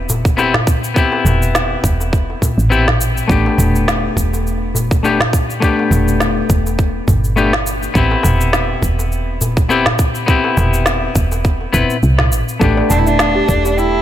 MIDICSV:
0, 0, Header, 1, 7, 480
1, 0, Start_track
1, 0, Key_signature, 0, "minor"
1, 0, Tempo, 582524
1, 794, Time_signature, 4, 2, 24, 8
1, 11552, End_track
2, 0, Start_track
2, 0, Title_t, "Steel tongue drum"
2, 0, Program_c, 0, 114
2, 10389, Note_on_c, 0, 69, 75
2, 10512, Note_off_c, 0, 69, 0
2, 10522, Note_on_c, 0, 74, 70
2, 10626, Note_off_c, 0, 74, 0
2, 10630, Note_on_c, 0, 81, 90
2, 10752, Note_off_c, 0, 81, 0
2, 10765, Note_on_c, 0, 76, 69
2, 10827, Note_off_c, 0, 76, 0
2, 11006, Note_on_c, 0, 67, 77
2, 11108, Note_off_c, 0, 67, 0
2, 11110, Note_on_c, 0, 69, 73
2, 11232, Note_off_c, 0, 69, 0
2, 11245, Note_on_c, 0, 67, 73
2, 11342, Note_off_c, 0, 67, 0
2, 11349, Note_on_c, 0, 79, 79
2, 11479, Note_off_c, 0, 79, 0
2, 11552, End_track
3, 0, Start_track
3, 0, Title_t, "Cello"
3, 0, Program_c, 1, 42
3, 10636, Note_on_c, 1, 62, 101
3, 10698, Note_on_c, 1, 64, 81
3, 10710, Note_off_c, 1, 62, 0
3, 10769, Note_on_c, 1, 62, 99
3, 10781, Note_off_c, 1, 64, 0
3, 11354, Note_on_c, 1, 64, 103
3, 11367, Note_off_c, 1, 62, 0
3, 11552, Note_off_c, 1, 64, 0
3, 11552, End_track
4, 0, Start_track
4, 0, Title_t, "Clean electric guitar"
4, 0, Program_c, 2, 27
4, 0, Note_on_c, 2, 59, 72
4, 0, Note_on_c, 2, 60, 63
4, 0, Note_on_c, 2, 64, 64
4, 0, Note_on_c, 2, 67, 79
4, 280, Note_off_c, 2, 59, 0
4, 285, Note_off_c, 2, 60, 0
4, 292, Note_off_c, 2, 64, 0
4, 297, Note_off_c, 2, 67, 0
4, 304, Note_on_c, 2, 59, 86
4, 311, Note_on_c, 2, 60, 74
4, 317, Note_on_c, 2, 64, 74
4, 322, Note_on_c, 2, 67, 93
4, 433, Note_off_c, 2, 59, 0
4, 436, Note_off_c, 2, 60, 0
4, 439, Note_off_c, 2, 64, 0
4, 442, Note_off_c, 2, 67, 0
4, 777, Note_on_c, 2, 59, 68
4, 787, Note_on_c, 2, 60, 64
4, 799, Note_on_c, 2, 64, 66
4, 809, Note_on_c, 2, 67, 76
4, 2200, Note_off_c, 2, 59, 0
4, 2205, Note_off_c, 2, 60, 0
4, 2211, Note_off_c, 2, 64, 0
4, 2216, Note_off_c, 2, 67, 0
4, 2225, Note_on_c, 2, 60, 76
4, 2227, Note_on_c, 2, 59, 76
4, 2237, Note_on_c, 2, 64, 70
4, 2238, Note_on_c, 2, 67, 88
4, 2353, Note_off_c, 2, 59, 0
4, 2354, Note_off_c, 2, 60, 0
4, 2358, Note_off_c, 2, 64, 0
4, 2360, Note_off_c, 2, 67, 0
4, 2700, Note_on_c, 2, 57, 71
4, 2709, Note_on_c, 2, 59, 64
4, 2719, Note_on_c, 2, 62, 62
4, 2733, Note_on_c, 2, 67, 78
4, 4121, Note_off_c, 2, 57, 0
4, 4126, Note_off_c, 2, 59, 0
4, 4131, Note_off_c, 2, 62, 0
4, 4138, Note_off_c, 2, 67, 0
4, 4145, Note_on_c, 2, 57, 78
4, 4155, Note_on_c, 2, 59, 65
4, 4155, Note_on_c, 2, 62, 70
4, 4161, Note_on_c, 2, 67, 96
4, 4273, Note_off_c, 2, 57, 0
4, 4277, Note_off_c, 2, 59, 0
4, 4279, Note_off_c, 2, 62, 0
4, 4281, Note_off_c, 2, 67, 0
4, 4617, Note_on_c, 2, 57, 68
4, 4626, Note_on_c, 2, 59, 63
4, 4638, Note_on_c, 2, 62, 64
4, 4650, Note_on_c, 2, 67, 76
4, 6040, Note_off_c, 2, 57, 0
4, 6044, Note_off_c, 2, 59, 0
4, 6051, Note_off_c, 2, 62, 0
4, 6056, Note_off_c, 2, 67, 0
4, 6066, Note_on_c, 2, 57, 87
4, 6070, Note_on_c, 2, 59, 80
4, 6077, Note_on_c, 2, 62, 74
4, 6082, Note_on_c, 2, 67, 91
4, 6194, Note_off_c, 2, 57, 0
4, 6195, Note_off_c, 2, 59, 0
4, 6199, Note_off_c, 2, 62, 0
4, 6202, Note_off_c, 2, 67, 0
4, 6541, Note_on_c, 2, 59, 71
4, 6552, Note_on_c, 2, 60, 64
4, 6564, Note_on_c, 2, 64, 65
4, 6574, Note_on_c, 2, 67, 77
4, 7962, Note_off_c, 2, 59, 0
4, 7967, Note_off_c, 2, 60, 0
4, 7973, Note_off_c, 2, 64, 0
4, 7979, Note_off_c, 2, 67, 0
4, 7987, Note_on_c, 2, 59, 87
4, 7991, Note_on_c, 2, 60, 78
4, 7995, Note_on_c, 2, 64, 77
4, 8002, Note_on_c, 2, 67, 92
4, 8114, Note_off_c, 2, 59, 0
4, 8116, Note_off_c, 2, 60, 0
4, 8118, Note_off_c, 2, 64, 0
4, 8122, Note_off_c, 2, 67, 0
4, 8457, Note_on_c, 2, 59, 75
4, 8467, Note_on_c, 2, 60, 64
4, 8478, Note_on_c, 2, 64, 64
4, 8489, Note_on_c, 2, 67, 73
4, 9644, Note_off_c, 2, 59, 0
4, 9649, Note_off_c, 2, 60, 0
4, 9654, Note_off_c, 2, 64, 0
4, 9660, Note_off_c, 2, 67, 0
4, 9662, Note_on_c, 2, 59, 76
4, 9666, Note_on_c, 2, 60, 74
4, 9674, Note_on_c, 2, 64, 71
4, 9677, Note_on_c, 2, 71, 82
4, 9853, Note_off_c, 2, 59, 0
4, 9855, Note_off_c, 2, 60, 0
4, 9859, Note_off_c, 2, 64, 0
4, 9860, Note_off_c, 2, 71, 0
4, 10379, Note_on_c, 2, 57, 70
4, 10389, Note_on_c, 2, 59, 63
4, 10401, Note_on_c, 2, 62, 65
4, 10413, Note_on_c, 2, 67, 76
4, 11552, Note_off_c, 2, 57, 0
4, 11552, Note_off_c, 2, 59, 0
4, 11552, Note_off_c, 2, 62, 0
4, 11552, Note_off_c, 2, 67, 0
4, 11552, End_track
5, 0, Start_track
5, 0, Title_t, "FM bass"
5, 0, Program_c, 3, 39
5, 0, Note_on_c, 3, 28, 82
5, 493, Note_off_c, 3, 28, 0
5, 1029, Note_on_c, 3, 28, 77
5, 1451, Note_off_c, 3, 28, 0
5, 1514, Note_on_c, 3, 28, 83
5, 1934, Note_off_c, 3, 28, 0
5, 2124, Note_on_c, 3, 33, 86
5, 2652, Note_off_c, 3, 33, 0
5, 2715, Note_on_c, 3, 33, 95
5, 2879, Note_off_c, 3, 33, 0
5, 2952, Note_on_c, 3, 28, 83
5, 3373, Note_off_c, 3, 28, 0
5, 3433, Note_on_c, 3, 28, 82
5, 4333, Note_off_c, 3, 28, 0
5, 4869, Note_on_c, 3, 28, 81
5, 5291, Note_off_c, 3, 28, 0
5, 5352, Note_on_c, 3, 28, 79
5, 5773, Note_off_c, 3, 28, 0
5, 5832, Note_on_c, 3, 31, 89
5, 6493, Note_off_c, 3, 31, 0
5, 6553, Note_on_c, 3, 33, 92
5, 6718, Note_off_c, 3, 33, 0
5, 6793, Note_on_c, 3, 28, 82
5, 7214, Note_off_c, 3, 28, 0
5, 7271, Note_on_c, 3, 28, 83
5, 8172, Note_off_c, 3, 28, 0
5, 8713, Note_on_c, 3, 28, 80
5, 9133, Note_off_c, 3, 28, 0
5, 9191, Note_on_c, 3, 28, 84
5, 9612, Note_off_c, 3, 28, 0
5, 9674, Note_on_c, 3, 28, 80
5, 9760, Note_off_c, 3, 28, 0
5, 9913, Note_on_c, 3, 36, 94
5, 10154, Note_on_c, 3, 33, 89
5, 10167, Note_off_c, 3, 36, 0
5, 10241, Note_off_c, 3, 33, 0
5, 10393, Note_on_c, 3, 33, 91
5, 10558, Note_off_c, 3, 33, 0
5, 10633, Note_on_c, 3, 28, 78
5, 11053, Note_off_c, 3, 28, 0
5, 11113, Note_on_c, 3, 28, 83
5, 11552, Note_off_c, 3, 28, 0
5, 11552, End_track
6, 0, Start_track
6, 0, Title_t, "Darbuka"
6, 80, Note_on_c, 9, 64, 85
6, 162, Note_off_c, 9, 64, 0
6, 211, Note_on_c, 9, 62, 32
6, 294, Note_off_c, 9, 62, 0
6, 312, Note_on_c, 9, 63, 64
6, 395, Note_off_c, 9, 63, 0
6, 446, Note_on_c, 9, 64, 91
6, 529, Note_off_c, 9, 64, 0
6, 925, Note_on_c, 9, 63, 58
6, 1007, Note_off_c, 9, 63, 0
6, 1033, Note_on_c, 9, 64, 83
6, 1040, Note_on_c, 9, 63, 72
6, 1115, Note_off_c, 9, 64, 0
6, 1122, Note_off_c, 9, 63, 0
6, 1651, Note_on_c, 9, 62, 46
6, 1734, Note_off_c, 9, 62, 0
6, 1895, Note_on_c, 9, 63, 31
6, 1978, Note_off_c, 9, 63, 0
6, 1993, Note_on_c, 9, 64, 86
6, 2076, Note_off_c, 9, 64, 0
6, 2374, Note_on_c, 9, 64, 75
6, 2456, Note_off_c, 9, 64, 0
6, 2853, Note_on_c, 9, 63, 54
6, 2936, Note_off_c, 9, 63, 0
6, 2951, Note_on_c, 9, 64, 85
6, 2952, Note_on_c, 9, 63, 65
6, 3034, Note_off_c, 9, 63, 0
6, 3034, Note_off_c, 9, 64, 0
6, 3573, Note_on_c, 9, 62, 51
6, 3655, Note_off_c, 9, 62, 0
6, 3912, Note_on_c, 9, 64, 84
6, 3995, Note_off_c, 9, 64, 0
6, 4053, Note_on_c, 9, 62, 34
6, 4136, Note_off_c, 9, 62, 0
6, 4162, Note_on_c, 9, 63, 55
6, 4244, Note_off_c, 9, 63, 0
6, 4285, Note_on_c, 9, 64, 87
6, 4367, Note_off_c, 9, 64, 0
6, 4773, Note_on_c, 9, 63, 50
6, 4856, Note_off_c, 9, 63, 0
6, 4872, Note_on_c, 9, 63, 66
6, 4872, Note_on_c, 9, 64, 79
6, 4954, Note_off_c, 9, 63, 0
6, 4955, Note_off_c, 9, 64, 0
6, 5493, Note_on_c, 9, 62, 46
6, 5576, Note_off_c, 9, 62, 0
6, 5840, Note_on_c, 9, 64, 77
6, 5923, Note_off_c, 9, 64, 0
6, 6686, Note_on_c, 9, 63, 57
6, 6768, Note_off_c, 9, 63, 0
6, 6783, Note_on_c, 9, 63, 71
6, 6789, Note_on_c, 9, 64, 73
6, 6865, Note_off_c, 9, 63, 0
6, 6872, Note_off_c, 9, 64, 0
6, 7407, Note_on_c, 9, 62, 49
6, 7490, Note_off_c, 9, 62, 0
6, 7755, Note_on_c, 9, 64, 79
6, 7838, Note_off_c, 9, 64, 0
6, 7889, Note_on_c, 9, 62, 35
6, 7971, Note_off_c, 9, 62, 0
6, 7985, Note_on_c, 9, 63, 63
6, 8068, Note_off_c, 9, 63, 0
6, 8126, Note_on_c, 9, 64, 80
6, 8209, Note_off_c, 9, 64, 0
6, 8605, Note_on_c, 9, 63, 59
6, 8688, Note_off_c, 9, 63, 0
6, 8712, Note_on_c, 9, 63, 71
6, 8713, Note_on_c, 9, 64, 70
6, 8794, Note_off_c, 9, 63, 0
6, 8796, Note_off_c, 9, 64, 0
6, 8955, Note_on_c, 9, 62, 37
6, 9037, Note_off_c, 9, 62, 0
6, 9326, Note_on_c, 9, 62, 55
6, 9408, Note_off_c, 9, 62, 0
6, 9566, Note_on_c, 9, 63, 31
6, 9648, Note_off_c, 9, 63, 0
6, 9676, Note_on_c, 9, 64, 76
6, 9759, Note_off_c, 9, 64, 0
6, 10049, Note_on_c, 9, 64, 74
6, 10132, Note_off_c, 9, 64, 0
6, 10526, Note_on_c, 9, 63, 60
6, 10609, Note_off_c, 9, 63, 0
6, 10634, Note_on_c, 9, 64, 73
6, 10637, Note_on_c, 9, 63, 87
6, 10716, Note_off_c, 9, 64, 0
6, 10719, Note_off_c, 9, 63, 0
6, 11250, Note_on_c, 9, 62, 51
6, 11333, Note_off_c, 9, 62, 0
6, 11552, End_track
7, 0, Start_track
7, 0, Title_t, "Drums"
7, 76, Note_on_c, 9, 82, 75
7, 159, Note_off_c, 9, 82, 0
7, 206, Note_on_c, 9, 36, 103
7, 213, Note_on_c, 9, 82, 39
7, 289, Note_off_c, 9, 36, 0
7, 295, Note_off_c, 9, 82, 0
7, 317, Note_on_c, 9, 82, 33
7, 400, Note_off_c, 9, 82, 0
7, 447, Note_on_c, 9, 38, 69
7, 530, Note_off_c, 9, 38, 0
7, 553, Note_on_c, 9, 36, 116
7, 557, Note_on_c, 9, 82, 70
7, 635, Note_off_c, 9, 36, 0
7, 639, Note_off_c, 9, 82, 0
7, 692, Note_on_c, 9, 82, 43
7, 774, Note_off_c, 9, 82, 0
7, 793, Note_on_c, 9, 36, 104
7, 798, Note_on_c, 9, 82, 36
7, 875, Note_off_c, 9, 36, 0
7, 881, Note_off_c, 9, 82, 0
7, 1038, Note_on_c, 9, 82, 75
7, 1120, Note_off_c, 9, 82, 0
7, 1173, Note_on_c, 9, 82, 43
7, 1256, Note_off_c, 9, 82, 0
7, 1277, Note_on_c, 9, 38, 78
7, 1281, Note_on_c, 9, 82, 33
7, 1359, Note_off_c, 9, 38, 0
7, 1363, Note_off_c, 9, 82, 0
7, 1514, Note_on_c, 9, 36, 101
7, 1521, Note_on_c, 9, 82, 77
7, 1596, Note_off_c, 9, 36, 0
7, 1603, Note_off_c, 9, 82, 0
7, 1654, Note_on_c, 9, 82, 45
7, 1736, Note_off_c, 9, 82, 0
7, 1754, Note_on_c, 9, 36, 94
7, 1762, Note_on_c, 9, 82, 33
7, 1836, Note_off_c, 9, 36, 0
7, 1844, Note_off_c, 9, 82, 0
7, 1994, Note_on_c, 9, 36, 58
7, 2001, Note_on_c, 9, 82, 69
7, 2076, Note_off_c, 9, 36, 0
7, 2083, Note_off_c, 9, 82, 0
7, 2136, Note_on_c, 9, 82, 40
7, 2218, Note_off_c, 9, 82, 0
7, 2240, Note_on_c, 9, 82, 32
7, 2323, Note_off_c, 9, 82, 0
7, 2371, Note_on_c, 9, 38, 65
7, 2454, Note_off_c, 9, 38, 0
7, 2479, Note_on_c, 9, 82, 78
7, 2561, Note_off_c, 9, 82, 0
7, 2615, Note_on_c, 9, 82, 41
7, 2698, Note_off_c, 9, 82, 0
7, 2715, Note_on_c, 9, 36, 104
7, 2722, Note_on_c, 9, 82, 34
7, 2797, Note_off_c, 9, 36, 0
7, 2805, Note_off_c, 9, 82, 0
7, 2960, Note_on_c, 9, 82, 76
7, 3042, Note_off_c, 9, 82, 0
7, 3094, Note_on_c, 9, 82, 42
7, 3176, Note_off_c, 9, 82, 0
7, 3197, Note_on_c, 9, 38, 80
7, 3201, Note_on_c, 9, 82, 33
7, 3280, Note_off_c, 9, 38, 0
7, 3284, Note_off_c, 9, 82, 0
7, 3434, Note_on_c, 9, 36, 55
7, 3440, Note_on_c, 9, 82, 75
7, 3517, Note_off_c, 9, 36, 0
7, 3523, Note_off_c, 9, 82, 0
7, 3574, Note_on_c, 9, 82, 44
7, 3656, Note_off_c, 9, 82, 0
7, 3684, Note_on_c, 9, 82, 30
7, 3766, Note_off_c, 9, 82, 0
7, 3921, Note_on_c, 9, 82, 67
7, 4003, Note_off_c, 9, 82, 0
7, 4047, Note_on_c, 9, 36, 102
7, 4052, Note_on_c, 9, 82, 37
7, 4130, Note_off_c, 9, 36, 0
7, 4134, Note_off_c, 9, 82, 0
7, 4158, Note_on_c, 9, 82, 32
7, 4241, Note_off_c, 9, 82, 0
7, 4289, Note_on_c, 9, 38, 73
7, 4372, Note_off_c, 9, 38, 0
7, 4394, Note_on_c, 9, 36, 111
7, 4400, Note_on_c, 9, 82, 69
7, 4476, Note_off_c, 9, 36, 0
7, 4482, Note_off_c, 9, 82, 0
7, 4533, Note_on_c, 9, 82, 41
7, 4616, Note_off_c, 9, 82, 0
7, 4634, Note_on_c, 9, 36, 98
7, 4638, Note_on_c, 9, 82, 34
7, 4716, Note_off_c, 9, 36, 0
7, 4721, Note_off_c, 9, 82, 0
7, 4878, Note_on_c, 9, 82, 75
7, 4960, Note_off_c, 9, 82, 0
7, 5011, Note_on_c, 9, 82, 41
7, 5094, Note_off_c, 9, 82, 0
7, 5112, Note_on_c, 9, 38, 73
7, 5116, Note_on_c, 9, 82, 32
7, 5195, Note_off_c, 9, 38, 0
7, 5199, Note_off_c, 9, 82, 0
7, 5353, Note_on_c, 9, 36, 96
7, 5355, Note_on_c, 9, 82, 70
7, 5436, Note_off_c, 9, 36, 0
7, 5437, Note_off_c, 9, 82, 0
7, 5491, Note_on_c, 9, 82, 40
7, 5573, Note_off_c, 9, 82, 0
7, 5593, Note_on_c, 9, 36, 93
7, 5594, Note_on_c, 9, 82, 30
7, 5675, Note_off_c, 9, 36, 0
7, 5676, Note_off_c, 9, 82, 0
7, 5832, Note_on_c, 9, 36, 60
7, 5835, Note_on_c, 9, 82, 65
7, 5914, Note_off_c, 9, 36, 0
7, 5918, Note_off_c, 9, 82, 0
7, 5968, Note_on_c, 9, 82, 38
7, 6051, Note_off_c, 9, 82, 0
7, 6074, Note_on_c, 9, 82, 28
7, 6157, Note_off_c, 9, 82, 0
7, 6207, Note_on_c, 9, 38, 64
7, 6289, Note_off_c, 9, 38, 0
7, 6316, Note_on_c, 9, 82, 65
7, 6399, Note_off_c, 9, 82, 0
7, 6450, Note_on_c, 9, 82, 38
7, 6532, Note_off_c, 9, 82, 0
7, 6552, Note_on_c, 9, 36, 93
7, 6556, Note_on_c, 9, 82, 33
7, 6635, Note_off_c, 9, 36, 0
7, 6638, Note_off_c, 9, 82, 0
7, 6796, Note_on_c, 9, 82, 69
7, 6878, Note_off_c, 9, 82, 0
7, 6928, Note_on_c, 9, 82, 41
7, 7011, Note_off_c, 9, 82, 0
7, 7030, Note_on_c, 9, 38, 80
7, 7034, Note_on_c, 9, 82, 33
7, 7112, Note_off_c, 9, 38, 0
7, 7116, Note_off_c, 9, 82, 0
7, 7272, Note_on_c, 9, 36, 52
7, 7275, Note_on_c, 9, 82, 74
7, 7354, Note_off_c, 9, 36, 0
7, 7357, Note_off_c, 9, 82, 0
7, 7411, Note_on_c, 9, 82, 41
7, 7494, Note_off_c, 9, 82, 0
7, 7516, Note_on_c, 9, 82, 30
7, 7598, Note_off_c, 9, 82, 0
7, 7756, Note_on_c, 9, 82, 67
7, 7838, Note_off_c, 9, 82, 0
7, 7885, Note_on_c, 9, 36, 93
7, 7889, Note_on_c, 9, 82, 39
7, 7967, Note_off_c, 9, 36, 0
7, 7971, Note_off_c, 9, 82, 0
7, 7994, Note_on_c, 9, 82, 31
7, 8077, Note_off_c, 9, 82, 0
7, 8124, Note_on_c, 9, 38, 70
7, 8206, Note_off_c, 9, 38, 0
7, 8231, Note_on_c, 9, 36, 100
7, 8231, Note_on_c, 9, 82, 68
7, 8314, Note_off_c, 9, 36, 0
7, 8314, Note_off_c, 9, 82, 0
7, 8364, Note_on_c, 9, 82, 41
7, 8446, Note_off_c, 9, 82, 0
7, 8471, Note_on_c, 9, 36, 105
7, 8474, Note_on_c, 9, 82, 33
7, 8554, Note_off_c, 9, 36, 0
7, 8556, Note_off_c, 9, 82, 0
7, 8712, Note_on_c, 9, 82, 72
7, 8795, Note_off_c, 9, 82, 0
7, 8846, Note_on_c, 9, 82, 44
7, 8928, Note_off_c, 9, 82, 0
7, 8946, Note_on_c, 9, 38, 75
7, 8950, Note_on_c, 9, 82, 33
7, 9029, Note_off_c, 9, 38, 0
7, 9033, Note_off_c, 9, 82, 0
7, 9192, Note_on_c, 9, 36, 90
7, 9192, Note_on_c, 9, 82, 68
7, 9274, Note_off_c, 9, 36, 0
7, 9275, Note_off_c, 9, 82, 0
7, 9325, Note_on_c, 9, 82, 44
7, 9408, Note_off_c, 9, 82, 0
7, 9432, Note_on_c, 9, 36, 89
7, 9432, Note_on_c, 9, 82, 29
7, 9514, Note_off_c, 9, 82, 0
7, 9515, Note_off_c, 9, 36, 0
7, 9672, Note_on_c, 9, 36, 53
7, 9673, Note_on_c, 9, 82, 66
7, 9755, Note_off_c, 9, 36, 0
7, 9755, Note_off_c, 9, 82, 0
7, 9805, Note_on_c, 9, 82, 39
7, 9888, Note_off_c, 9, 82, 0
7, 9913, Note_on_c, 9, 82, 30
7, 9995, Note_off_c, 9, 82, 0
7, 10041, Note_on_c, 9, 38, 72
7, 10123, Note_off_c, 9, 38, 0
7, 10153, Note_on_c, 9, 82, 69
7, 10235, Note_off_c, 9, 82, 0
7, 10288, Note_on_c, 9, 82, 41
7, 10370, Note_off_c, 9, 82, 0
7, 10393, Note_on_c, 9, 36, 103
7, 10393, Note_on_c, 9, 82, 34
7, 10475, Note_off_c, 9, 36, 0
7, 10476, Note_off_c, 9, 82, 0
7, 10631, Note_on_c, 9, 82, 74
7, 10714, Note_off_c, 9, 82, 0
7, 10767, Note_on_c, 9, 82, 41
7, 10850, Note_off_c, 9, 82, 0
7, 10870, Note_on_c, 9, 38, 85
7, 10874, Note_on_c, 9, 82, 33
7, 10952, Note_off_c, 9, 38, 0
7, 10956, Note_off_c, 9, 82, 0
7, 11112, Note_on_c, 9, 36, 61
7, 11114, Note_on_c, 9, 82, 75
7, 11195, Note_off_c, 9, 36, 0
7, 11197, Note_off_c, 9, 82, 0
7, 11249, Note_on_c, 9, 82, 43
7, 11332, Note_off_c, 9, 82, 0
7, 11356, Note_on_c, 9, 82, 30
7, 11438, Note_off_c, 9, 82, 0
7, 11552, End_track
0, 0, End_of_file